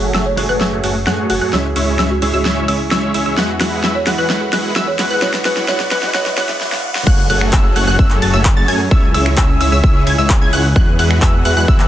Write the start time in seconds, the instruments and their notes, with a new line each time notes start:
Already playing: detuned saw bass F#1, grand piano F#3 A3 C#4 G#4, supersaw synth A3 F#4 G#4 C#5 F#5, analog synth pad G#4 C#5 F#5, synth pluck F#6, riser
0.14 detuned saw bass F#1, supersaw synth A3 F#4 G#4 C#5 E5, synth pluck E6, snare
0.26 marimba C#5
0.36 detuned saw bass F#1, grand piano F#3 A3 C#4 G#4, supersaw synth A3 F#4 G#4 C#5 F#5, synth pluck F#6, open hi-hat
0.49 detuned saw bass F#1, supersaw synth A3 F#4 G#4 C#5 F#5, marimba B4, synth pluck F#6
0.61 detuned saw bass F#1, supersaw synth A3 F#4 G#4 C#5 E5, synth pluck E6, snare
0.84 detuned saw bass F#1, supersaw synth A3 F#4 G#4 C#5 F#5, synth pluck F#6, open hi-hat
1.07 detuned saw bass F#2, supersaw synth A3 F#4 G#4 C#5 F#5, synth pluck F#6, snare
1.30 detuned saw bass F#1, supersaw synth A3 F#4 G#4 C#5 F#5, marimba F#4, synth pluck F#6, open hi-hat
1.41 detuned saw bass F#2, supersaw synth A3 F#4 G#4 C#5 F#5, marimba F#4, synth pluck F#6
1.52 detuned saw bass C#2, grand piano E3 G#3 C#4 G#4, supersaw synth G#3 C#4 E4 C#5 E5, analog synth pad E5 C#6, synth pluck E6, snare
1.76 detuned saw bass C#2, supersaw synth G#3 C#4 E4 C#5 E5, synth pluck E6, open hi-hat
1.99 detuned saw bass C#2, supersaw synth G#3 C#4 E4 C#5 E5, synth pluck E6, snare
2.10 marimba F#4
2.21 detuned saw bass C#2, grand piano E3 G#3 C#4 G#4, supersaw synth G#3 C#4 E4 C#5 E5, synth pluck E6, open hi-hat
2.33 detuned saw bass C#2, supersaw synth G#3 C#4 E4 C#5 E5, marimba F#4, synth pluck E6
2.45 detuned saw bass C#2, supersaw synth G#3 C#4 E4 C#5 E5, synth pluck E6, snare
2.68 detuned saw bass C#2, supersaw synth G#3 C#4 E4 C#5 E5, synth pluck E6, open hi-hat
2.91 detuned saw bass C#2, supersaw synth G#3 C#4 E4 C#5 E5, synth pluck E6, snare
3.14 detuned saw bass C#2, supersaw synth G#3 C#4 E4 C#5 E5, synth pluck E6, open hi-hat
3.26 detuned saw bass C#2, supersaw synth G#3 C#4 E4 C#5 E5, synth pluck E6
3.36 detuned saw bass E2, grand piano E3 G#3 B3 F#4, supersaw synth G#3 E4 F#4 B4 F#5, analog synth pad F#5 B5, synth pluck F#6, snare
3.60 detuned saw bass E2, supersaw synth G#3 E4 F#4 B4 F#5, synth pluck F#6, snare, open hi-hat
3.84 detuned saw bass E2, supersaw synth G#3 E4 F#4 B4 E5, synth pluck E6, snare
3.95 marimba C#5
4.05 detuned saw bass E2, grand piano E3 G#3 B3 F#4, supersaw synth G#3 E4 F#4 B4 F#5, synth pluck F#6, snare, open hi-hat
4.18 detuned saw bass E2, supersaw synth G#3 E4 F#4 B4 F#5, marimba B4, synth pluck F#6
4.29 detuned saw bass E2, grand piano E3 G#3 B3 F#4, supersaw synth G#3 E4 F#4 B4 F#5, synth pluck F#6, snare
4.53 detuned saw bass E2, supersaw synth G#3 E4 F#4 B4 F#5, synth pluck F#6, snare, open hi-hat
4.76 detuned saw bass E2, supersaw synth G#3 E4 F#4 B4 E5, synth pluck E6, snare
4.87 marimba C#5
4.98 detuned saw bass E2, grand piano E3 G#3 B3 F#4, supersaw synth G#3 E4 F#4 B4 F#5, synth pluck F#6, snare, open hi-hat
5.10 detuned saw bass E2, supersaw synth G#3 E4 F#4 B4 F#5, marimba B4, synth pluck F#6
5.21 detuned saw bass B1, grand piano E3 G#3 B3 F#4, supersaw synth G#3 E4 F#4 B4 F#5, analog synth pad B4 D5 C#6, marimba C#5, synth pluck F#6, snare
5.34 snare
5.45 detuned saw bass B1, supersaw synth G#3 E4 F#4 B4 F#5, marimba B4, synth pluck F#6, snare, open hi-hat
5.57 snare
5.67 detuned saw bass B1, grand piano E3 G#3 B3 F#4, supersaw synth G#3 E4 F#4 B4 F#5, marimba C#5, synth pluck F#6, snare
5.80 snare
5.91 detuned saw bass B1, supersaw synth G#3 E4 F#4 B4 F#5, marimba B4, synth pluck F#6, snare, open hi-hat
6.03 snare
6.13 detuned saw bass B1, grand piano E3 G#3 B3 F#4, supersaw synth G#3 E4 F#4 B4 F#5, marimba C#5, synth pluck F#6, snare
6.26 snare
6.36 detuned saw bass B1, grand piano E3 G#3 B3 F#4, supersaw synth G#3 E4 F#4 B4 F#5, marimba C#5, synth pluck F#6, snare, open hi-hat
6.49 snare
6.61 snare
6.72 snare
6.95 snare
7.07 detuned saw bass F#1, analog synth pad F#3 C#4 G#4 A4, supersaw synth A3 F#4 G#4 C#5 F#5, synth pluck F#6, kick, crash
7.30 detuned saw bass F#1, supersaw synth A3 F#4 G#4 C#5 F#5, synth pluck F#6, open hi-hat
7.41 finger snap
7.53 detuned saw bass F#1, supersaw synth A3 F#4 G#4 C#5 E5, synth pluck E6, kick, clap
7.76 detuned saw bass F#1, supersaw synth A3 F#4 G#4 C#5 F#5, synth pluck F#6, open hi-hat
7.87 detuned saw bass F#1, supersaw synth A3 F#4 G#4 C#5 F#5, synth pluck F#6
7.99 detuned saw bass F#1, supersaw synth A3 C#5 E5, synth pluck E6, kick
8.10 clap
8.22 detuned saw bass F#1, supersaw synth A3 F#4 G#4 C#5 A5, synth pluck A6, open hi-hat
8.34 detuned saw bass F#1, supersaw synth A3 F#4 G#4 C#5 E5, synth pluck E6
8.45 kick, clap
8.57 detuned saw bass F#1, supersaw synth A3 F#4 G#4 C#5 A5, synth pluck A6
8.68 detuned saw bass F#2, supersaw synth A3 F#4 G#4 C#5 G#5, synth pluck G#6, open hi-hat
8.91 detuned saw bass C#2, analog synth pad C#3 E4, supersaw synth G#3 C#4 E4 C#5 E5, synth pluck E6, kick
9.14 detuned saw bass C#2, supersaw synth G#3 C#4 E4 C#5 E5, synth pluck E6, open hi-hat
9.26 finger snap
9.37 detuned saw bass C#2, supersaw synth G#3 C#4 C#5, synth pluck E6, kick, clap
9.61 detuned saw bass C#2, supersaw synth G#3 C#4 E4 C#5 E5, synth pluck E6, open hi-hat
9.72 detuned saw bass C#2, supersaw synth G#3 C#4 E4 C#5 E5, synth pluck E6
9.84 detuned saw bass C#2, supersaw synth G#3 C#4 E4 C#5 E5, synth pluck E6, kick
10.07 detuned saw bass C#2, supersaw synth G#3 C#4 E4 C#5 G#5, synth pluck G#6, open hi-hat
10.18 detuned saw bass C#2, supersaw synth G#3 C#4 E4 C#5 E5, synth pluck E6
10.30 kick, clap
10.41 detuned saw bass C#2, supersaw synth G#3 C#4 E4 C#5 G#5, synth pluck G#6
10.53 detuned saw bass C#2, supersaw synth G#3 C#4 E4 C#5 F#5, synth pluck F#6, open hi-hat
10.76 detuned saw bass E2, analog synth pad E3 B3 F#4, supersaw synth G#3 E4 F#4 B4 F#5, synth pluck F#6, kick
10.99 detuned saw bass E2, supersaw synth G#3 E4 F#4 B4 F#5, synth pluck F#6, open hi-hat
11.11 finger snap
11.22 detuned saw bass E2, supersaw synth G#3 E4 F#4, synth pluck E6, kick, clap
11.45 detuned saw bass E2, supersaw synth G#3 E4 F#4 B4 F#5, synth pluck F#6, open hi-hat
11.57 detuned saw bass E2, supersaw synth G#3 E4 F#4 B4 F#5, synth pluck F#6
11.68 detuned saw bass E2, supersaw synth E4 F#4 B4 E5, synth pluck E6, kick
11.80 clap